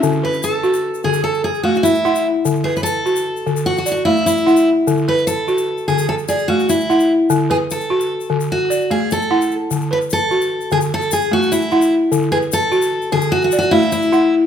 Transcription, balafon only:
<<
  \new Staff \with { instrumentName = "Balafon" } { \time 12/8 \key d \lydian \tempo 4. = 99 cis'16 r16 b'4. r2. fis''4~ | fis''8 b'4. r4. d''4. fis''4~ | fis''8 b'4. r4. d''4. fis''4~ | fis''8 b'4. r4. d''4. fis''4~ |
fis''8 b'4. r2. fis''4~ | fis''8 b'4. r4. d''4. fis''4 | }
  \new Staff \with { instrumentName = "Balafon" } { \time 12/8 \key d \lydian d4 r8 fis'4 d8 r4 a4 e'4 | d4 r8 fis'4 d8 r4 a4 e'4 | d4 r8 fis'4 d8 r4 a4 e'4 | d4 r8 fis'4 d8 r4 a4 e'4 |
d4 r8 fis'4 d8 r4 a4 e'4 | d4 r8 fis'4 d8 r4 a4 e'4 | }
>>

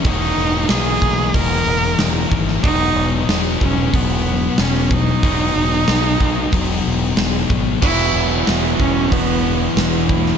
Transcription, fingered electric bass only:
\new Staff \with { instrumentName = "Fingered electric bass" } { \clef bass \time 4/4 \key b \major \tempo 4 = 92 e,,8 e,,8 b,,8 b,,8 e,,8 e,,8 e,,8 gis,,8 | e,,8 e,,8 e,,8 e,,8 e,,4 e,,4 | e,,8 e,,8 b,,8 b,,8 e,,8 e,,8 e,,8 gis,,8 | e,,8 e,,8 e,,8 e,,8 e,,4 e,,4 | }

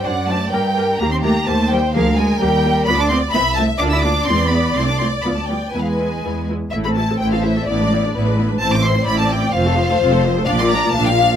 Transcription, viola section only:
\new Staff \with { instrumentName = "Viola section" } { \time 2/4 \key ees \lydian \tempo 4 = 127 <d' c''>8 <d' c''>8 <bes bes'>8 <bes bes'>8 | <bes g'>8 <bes g'>8 <bes g'>8 <bes g'>8 | <bes aes'>8 <bes aes'>8 <bes g'>8 <bes g'>8 | \key a \minor <b f'>8 <b f'>8 <c' e'>8 <c' e'>8 |
<bes f'>8 <bes f'>8 <gis e'>8 <gis e'>8 | <a e'>8 <a e'>8 <b f'>8 <b f'>8 | <b e'>8 <b e'>8 <b e'>8 <b e'>8 | <a e'>16 <c' a'>16 <a e'>16 <c' a'>16 <a e'>16 <c' a'>16 <a e'>16 <c' a'>16 |
<b e'>16 <gis d'>16 <b e'>16 <gis d'>16 <b e'>16 <gis d'>16 <b e'>16 <gis d'>16 | <c' e'>16 <a c'>16 <c' e'>16 <a c'>16 <c' e'>16 <a c'>16 <c' e'>16 <a c'>16 | <c' f'>16 <a a'>16 <c' f'>16 <a a'>16 <c' f'>16 <a a'>16 <c' f'>16 <a a'>16 | \key bes \lydian <f d'>16 <bes f'>16 <f d'>16 <bes f'>16 <f d'>16 <bes f'>16 <f d'>16 <bes f'>16 | }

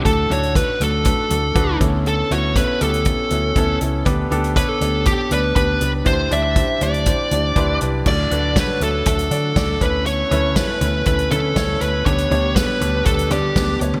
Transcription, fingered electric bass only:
\new Staff \with { instrumentName = "Fingered electric bass" } { \clef bass \time 4/4 \key d \major \tempo 4 = 120 d,8 d,8. r16 d,8. r16 d,8 d,8 d,8~ | d,8 d,8. r16 d,8. r16 d,8 d,8 cis,8 | d,8 d,8. r16 d,8. r16 d,8 d,8 cis,8 | d,8 d,8. r16 d,8. r16 d,8 d,8 c,8 |
d,8 d,8. r16 d,8 d,8 d8 d,8 d,8~ | d,8 d,8. r16 d,8 d,8 d8 d,8 d,8 | d,8 d,8. r16 d,8 d,8 d8 d,8 d,8 | }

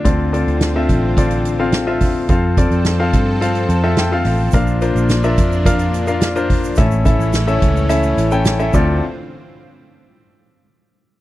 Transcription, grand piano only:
<<
  \new Staff \with { instrumentName = "Grand piano" } { \time 4/4 \key d \minor \tempo 4 = 107 <c' f' a' d''>8 <c' f' a' d''>8. <c' f' a' e''>8. <c' f' a' d''>8. <c' f' a' f''>8 <c' f' a' e''>8. | <c' f' a' f''>8 <c' f' a' d''>8. <c' f' a' f''>8. <c' f' a' f''>8. <c' f' a' e''>8 <c' f' a' f''>8. | <d' f' bes' f''>8 <d' f' bes' c''>8. <d' f' bes' e''>8. <d' f' bes' f''>8. <d' f' bes' f''>8 <d' f' bes' c''>8. | <cis' e' a' e''>8 <cis' e' a' e''>8. <cis' e' a' e''>8. <cis' e' a' e''>8. <cis' e' a' g''>8 <cis' e' a' e''>16 <c' f' a' d''>8 |
r1 | }
  \new Staff \with { instrumentName = "Grand piano" } { \clef bass \time 4/4 \key d \minor d4. r2 r8 | r2 r8 a''8 g''8 f''8 | bes,4. r2 r8 | a,4. r2 d,8 |
r1 | }
>>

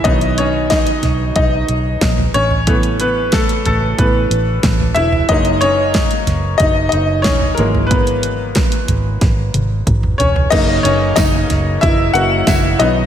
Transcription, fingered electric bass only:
\new Staff \with { instrumentName = "Fingered electric bass" } { \clef bass \time 4/4 \key fis \mixolydian \tempo 4 = 92 b,,4~ b,,16 r16 b,,8 b,,8 b,,8 ais,,8 a,,8~ | a,,4~ a,,16 r16 a,,8 a,,8 a,,8 a,,8 e,,8 | fis,,4~ fis,,16 r16 fis,,8 fis,,8 fis,,8 e,,8 gis,,8~ | gis,,4~ gis,,16 r16 gis,,8 gis,,8 gis,,8 gis,,8 e,,8 |
fis,,8 fis,,8 fis,,8 fis,,8 fis,,8 fis,,8 fis,,8 b,,8 | }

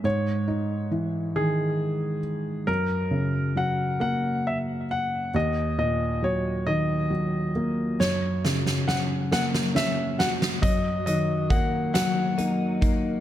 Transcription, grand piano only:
\new Staff \with { instrumentName = "Grand piano" } { \time 6/8 \key dis \phrygian \tempo 4. = 45 cis''4 r8 gis'4. | ais'4 fis''8 fis''8 e''8 fis''8 | dis''8 dis''8 cis''8 dis''4. | cis''4 fis''8 fis''8 e''8 fis''8 |
dis''8 dis''8 fis''8 fis''4. | }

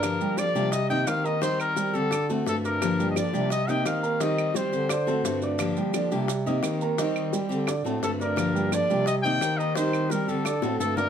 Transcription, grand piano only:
\new Staff \with { instrumentName = "Grand piano" } { \time 4/4 \key g \minor \tempo 4 = 173 r8 <g g' g''>8 <d d' d''>8 <g g' g''>4 <ees' ees'' ees'''>4 <bes bes' bes''>8 | <ees ees' ees''>4 <g g' g''>4 <d' d'' d'''>8 <a a' a''>4 <d' d'' d'''>8~ | <d' d'' d'''>8 <g g' g''>8 <d d' d''>8 <g g' g''>4 <ees' ees'' ees'''>4 <bes bes' bes''>8 | <ees ees' ees''>4 <g g' g''>4 <d' d'' d'''>8 <a a' a''>4 <d' d'' d'''>8~ |
<d' d'' d'''>8 <g g' g''>8 <d d' d''>8 <g g' g''>4 <ees' ees'' ees'''>4 <bes bes' bes''>8 | <ees ees' ees''>4 <g g' g''>4 <d' d'' d'''>8 <a a' a''>4 <d' d'' d'''>8~ | <d' d'' d'''>8 <g g' g''>8 <d d' d''>8 <g g' g''>4 <ees' ees'' ees'''>4 <bes bes' bes''>8 | <ees ees' ees''>4 <g g' g''>4 <d' d'' d'''>8 <a a' a''>4 <d' d'' d'''>8 | }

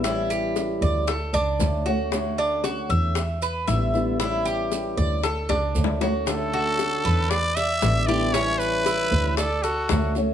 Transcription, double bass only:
\new Staff \with { instrumentName = "Double bass" } { \clef bass \time 4/4 \key d \major \tempo 4 = 116 a,,4. d,4 cis,8 d,4~ | d,4. e,4. a,,4~ | a,,4. d,4 cis,8 d,4~ | d,4. e,4. a,,4~ |
a,,4. d,4. d,4 | }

